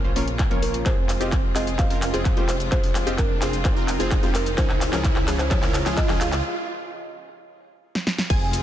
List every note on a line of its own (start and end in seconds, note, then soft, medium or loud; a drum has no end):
0.00 0.82 C#3 medium
0.00 0.82 A#3 medium
0.00 0.82 F4 medium
0.00 0.13 A#4 medium
0.00 riser medium
0.04 0.14 A#1 loud
0.04 0.14 C#4 medium
0.04 0.14 F4 medium
0.04 0.14 C5 loud
0.15 0.49 A#1 loud
0.15 0.21 F3 medium
0.15 0.22 A#3 medium
0.15 0.28 C#4 medium
0.15 0.22 C#4 medium
0.15 0.28 F4 medium
0.15 0.22 A#4 loud
0.15 0.28 C#5 medium
0.15 open hi-hat loud
0.28 closed hi-hat soft
0.39 kick loud
0.39 clap medium
0.39 closed hi-hat medium
0.50 0.84 A#1 medium
0.50 0.83 F3 medium
0.50 0.83 A#3 medium
0.50 0.83 C#4 medium
0.50 0.83 F4 medium
0.50 0.83 A#4 medium
0.50 0.83 C#5 loud
0.50 closed hi-hat soft
0.62 0.87 A#4 medium
0.62 open hi-hat loud
0.74 closed hi-hat soft
0.85 1.18 F1 medium
0.85 4.54 C3 medium
0.85 0.91 G#3 medium
0.85 6.40 G#3 medium
0.85 0.91 C4 medium
0.85 1.18 C4 medium
0.85 1.18 F4 medium
0.85 6.40 F4 medium
0.85 0.92 F4 medium
0.85 1.18 G#4 medium
0.85 1.58 C5 loud
0.85 0.92 C5 medium
0.85 kick loud
0.85 clap medium
0.85 closed hi-hat medium
0.85 cabasa soft
1.09 clap medium
1.09 open hi-hat loud
1.09 cabasa medium
1.20 1.53 F1 loud
1.20 1.26 G#3 medium
1.20 1.26 C4 medium
1.20 1.53 C4 medium
1.20 1.53 F4 medium
1.20 1.26 F4 medium
1.20 1.53 G4 medium
1.20 1.27 D#5 loud
1.20 closed hi-hat medium
1.20 cabasa soft
1.32 kick loud
1.32 clap medium
1.32 closed hi-hat medium
1.32 cabasa soft
1.55 1.88 F1 medium
1.55 1.61 G#3 medium
1.55 1.61 C4 medium
1.55 1.88 C4 medium
1.55 1.88 F4 medium
1.55 1.61 F4 medium
1.55 1.88 G#4 medium
1.55 1.61 C5 medium
1.55 1.80 D#5 loud
1.55 clap medium
1.55 open hi-hat loud
1.55 cabasa medium
1.67 closed hi-hat soft
1.67 cabasa soft
1.78 1.84 G#3 medium
1.78 1.84 C4 medium
1.78 1.85 F4 medium
1.78 1.85 C5 medium
1.78 2.45 F5 loud
1.78 kick loud
1.78 clap medium
1.78 closed hi-hat medium
1.78 cabasa soft
1.90 2.11 F1 loud
1.90 2.10 C4 medium
1.90 2.10 F4 medium
1.90 2.10 A#4 loud
1.90 open hi-hat medium
2.02 clap medium
2.02 open hi-hat loud
2.02 cabasa medium
2.13 2.35 F1 medium
2.13 2.34 G#3 medium
2.13 2.34 C4 medium
2.13 2.26 C4 medium
2.13 2.26 F4 medium
2.13 2.34 F4 medium
2.13 2.26 G#4 medium
2.13 2.34 C5 medium
2.13 closed hi-hat soft
2.13 cabasa soft
2.25 kick loud
2.25 clap medium
2.25 closed hi-hat medium
2.25 cabasa soft
2.36 2.70 F1 loud
2.36 2.42 G#3 medium
2.36 2.43 C4 medium
2.36 2.56 C4 medium
2.36 2.56 F4 medium
2.36 2.43 F4 medium
2.36 2.56 G4 loud
2.36 2.43 C5 loud
2.36 closed hi-hat soft
2.49 2.71 C5 medium
2.49 clap medium
2.49 open hi-hat loud
2.49 cabasa medium
2.60 closed hi-hat soft
2.60 cabasa soft
2.71 3.04 F1 loud
2.71 2.77 G#3 medium
2.71 2.77 C4 medium
2.71 3.04 C4 medium
2.71 3.04 F4 medium
2.71 2.78 F4 medium
2.71 3.04 G#4 medium
2.71 3.20 C5 loud
2.71 2.78 C5 medium
2.71 kick loud
2.71 clap medium
2.71 closed hi-hat medium
2.71 cabasa soft
2.84 open hi-hat medium
2.95 clap medium
2.95 open hi-hat loud
2.95 cabasa medium
3.06 3.39 F1 loud
3.06 3.12 G#3 medium
3.06 3.12 C4 medium
3.06 3.39 C4 medium
3.06 3.39 F4 medium
3.06 3.13 F4 medium
3.06 3.39 G4 medium
3.06 3.13 D#5 loud
3.06 closed hi-hat medium
3.06 cabasa soft
3.18 3.42 A#4 medium
3.18 kick loud
3.18 clap medium
3.18 closed hi-hat medium
3.18 cabasa soft
3.41 3.74 F1 medium
3.41 3.47 G#3 medium
3.41 3.47 C4 medium
3.41 3.74 C4 medium
3.41 3.74 F4 medium
3.41 3.47 F4 medium
3.41 3.74 G#4 medium
3.41 3.85 G#4 medium
3.41 3.48 C5 medium
3.41 clap medium
3.41 open hi-hat loud
3.41 cabasa medium
3.53 closed hi-hat medium
3.53 cabasa soft
3.64 3.70 G#3 medium
3.64 3.70 C4 medium
3.64 3.71 F4 medium
3.64 3.71 C5 loud
3.64 kick loud
3.64 clap medium
3.64 closed hi-hat medium
3.64 cabasa soft
3.76 3.97 F1 loud
3.76 3.96 C4 medium
3.76 3.96 F4 medium
3.76 3.96 A#4 loud
3.88 clap medium
3.88 open hi-hat loud
3.88 cabasa medium
3.99 4.21 F1 loud
3.99 4.20 G#3 medium
3.99 4.20 C4 medium
3.99 4.12 C4 medium
3.99 4.12 F4 medium
3.99 4.20 F4 medium
3.99 4.12 G#4 medium
3.99 4.20 C5 medium
3.99 closed hi-hat medium
3.99 cabasa soft
4.11 kick loud
4.11 clap medium
4.11 closed hi-hat medium
4.11 cabasa soft
4.22 4.56 F1 loud
4.22 4.28 G#3 loud
4.22 4.29 C4 medium
4.22 4.42 C4 medium
4.22 4.42 F4 medium
4.22 4.29 F4 medium
4.22 4.42 G4 loud
4.22 4.29 C5 loud
4.22 closed hi-hat soft
4.35 4.45 A#4 medium
4.35 clap medium
4.35 open hi-hat loud
4.35 cabasa medium
4.46 closed hi-hat medium
4.46 cabasa soft
4.57 4.90 C#2 loud
4.57 6.42 C#3 medium
4.57 4.63 F3 medium
4.57 4.63 G#3 medium
4.57 4.90 C#4 medium
4.57 4.64 C#4 medium
4.57 4.90 F4 medium
4.57 4.90 G#4 medium
4.57 4.64 G#4 medium
4.57 5.30 C5 loud
4.57 kick loud
4.57 clap medium
4.57 closed hi-hat medium
4.57 cabasa soft
4.70 clap medium
4.81 clap medium
4.81 open hi-hat loud
4.81 cabasa medium
4.92 5.25 C#2 loud
4.92 4.98 F3 medium
4.92 4.98 G#3 medium
4.92 4.99 C#4 medium
4.92 5.25 C#4 medium
4.92 5.25 F4 medium
4.92 5.25 G#4 medium
4.92 4.99 A#4 loud
4.92 clap medium
4.92 closed hi-hat medium
4.92 cabasa soft
5.04 kick loud
5.04 clap medium
5.04 closed hi-hat medium
5.04 cabasa soft
5.16 clap medium
5.27 5.60 C#2 loud
5.27 5.33 F3 medium
5.27 5.33 G#3 medium
5.27 5.60 C#4 medium
5.27 5.33 C#4 medium
5.27 5.60 F4 medium
5.27 5.60 G#4 medium
5.27 5.34 G#4 medium
5.27 5.38 C#5 loud
5.27 clap medium
5.27 open hi-hat loud
5.27 cabasa medium
5.39 5.50 C5 medium
5.39 clap medium
5.39 closed hi-hat medium
5.39 cabasa soft
5.50 5.56 F3 medium
5.50 5.56 G#3 medium
5.50 5.57 C#4 medium
5.50 5.57 G#4 loud
5.50 5.94 C#5 loud
5.50 kick loud
5.50 clap loud
5.50 closed hi-hat medium
5.50 cabasa soft
5.63 5.83 C#2 loud
5.63 5.82 C#4 medium
5.63 5.82 F4 medium
5.63 5.82 A#4 loud
5.63 clap medium
5.63 open hi-hat medium
5.74 clap loud
5.74 open hi-hat loud
5.74 cabasa medium
5.85 6.07 C#2 loud
5.85 6.06 F3 medium
5.85 6.06 G#3 medium
5.85 5.98 C#4 medium
5.85 6.06 C#4 medium
5.85 5.98 F4 medium
5.85 5.98 G#4 medium
5.85 6.07 G#4 medium
5.85 clap medium
5.85 closed hi-hat medium
5.85 cabasa soft
5.97 6.21 D#5 loud
5.97 kick loud
5.97 clap loud
5.97 closed hi-hat medium
5.97 cabasa soft
6.08 6.42 C#2 loud
6.08 6.14 F3 loud
6.08 6.15 G#3 medium
6.08 6.28 C#4 loud
6.08 6.15 C#4 medium
6.08 6.28 F4 medium
6.08 6.28 G#4 loud
6.08 6.15 G#4 loud
6.08 clap medium
6.08 closed hi-hat soft
6.21 7.80 F5 loud
6.21 clap loud
6.21 open hi-hat loud
6.21 cabasa medium
6.32 clap medium
6.32 closed hi-hat medium
6.32 cabasa soft
7.95 snare medium
8.07 snare medium
8.18 snare medium
8.30 8.63 F1 loud
8.30 8.63 C3 medium
8.30 8.63 G#3 medium
8.30 8.62 C4 medium
8.30 8.62 F4 medium
8.30 8.63 F4 medium
8.30 8.62 G#4 medium
8.30 8.62 G#5 medium
8.30 kick loud
8.30 closed hi-hat medium
8.30 crash loud
8.30 cabasa soft
8.53 open hi-hat loud
8.53 cabasa medium